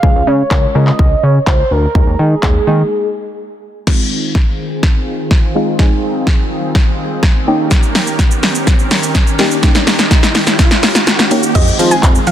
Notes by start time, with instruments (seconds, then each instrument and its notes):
Already playing: soft synth lead F5
0.03 analog synth bass C#2, synth stab G#3 C#4 F4 G#4, kick
0.15 analog synth bass C#2
0.27 analog synth bass C#3, soft synth lead C#5
0.51 analog synth bass C#2, synth stab G#3 C#4 F4 A#4, kick, clap
0.75 analog synth bass C#3, synth stab G#3 C#4 F4 A#4, soft synth lead D#5
0.87 clap
0.99 analog synth bass C#2, kick
1.23 analog synth bass C#3, soft synth lead C#5
1.47 analog synth bass C#2, soft synth lead C5, kick, clap
1.71 analog synth bass D2, soft synth lead A#4
1.95 analog synth bass D#2, synth stab G#3 A#3 D#4 G#4, kick
2.07 analog synth bass D#2
2.19 analog synth bass D#3, soft synth lead G#4
2.43 analog synth bass D#2, synth stab G#3 A#3 D#4 G#4, kick, clap
2.67 analog synth bass D#3, synth stab G#3 A#3 D#4 G#4
3.87 analog synth pad D#3 C4 F4 G#4, synth stab G#3 C4 D#4 F4, kick, snare, crash, riser
4.35 kick, snare
4.83 kick, snare
5.31 kick, snare
5.55 synth stab G#3 C4 D#4 F4
5.79 synth stab G#3 C4 D#4 G#4, kick, snare
6.27 kick, snare
6.75 kick, snare
7.23 kick, snare
7.47 analog synth pad D#3 C#4 G4 A#4, synth stab A#3 C#4 D#4 G4
7.71 kick, snare, closed hi-hat, shaker
7.83 shaker
7.95 snare, open hi-hat, shaker
8.07 shaker
8.19 kick, snare, closed hi-hat, shaker
8.31 shaker
8.43 snare, open hi-hat, shaker
8.55 shaker
8.67 kick, snare, closed hi-hat, shaker
8.79 shaker
8.91 snare, open hi-hat, shaker
9.03 shaker
9.15 kick, snare, closed hi-hat, shaker
9.27 shaker
9.39 synth stab A#3 C#4 D#4 G4, snare, open hi-hat, shaker
9.51 shaker
9.63 synth stab A#3 C#4 D#4 G4, kick, snare, closed hi-hat, shaker
9.75 snare, shaker
9.87 snare, open hi-hat, shaker
9.99 snare, shaker
10.11 kick, snare, closed hi-hat, shaker
10.23 snare, shaker
10.35 snare, open hi-hat, shaker
10.47 snare, shaker
10.59 kick, snare, closed hi-hat, shaker
10.71 snare, shaker
10.83 snare, open hi-hat, shaker
10.95 snare, shaker
11.07 snare, closed hi-hat, shaker
11.19 snare, shaker
11.31 synth stab A#3 C#4 D#4 G4, open hi-hat, shaker
11.43 shaker
11.55 analog synth bass F2, analog synth pad D#3 G#3 C4 F4, synth stab C4 D#4 F4 G#4 C5, synth pluck D#5, kick, closed hi-hat, crash, shaker
11.67 shaker
11.79 analog synth bass F3, synth stab C4 D#4 F4 G#4 C5, open hi-hat, shaker
11.91 synth pluck G#5, shaker
12.03 analog synth bass F2, kick, clap, closed hi-hat, shaker
12.15 shaker
12.27 analog synth bass F3, synth pluck F5, open hi-hat, shaker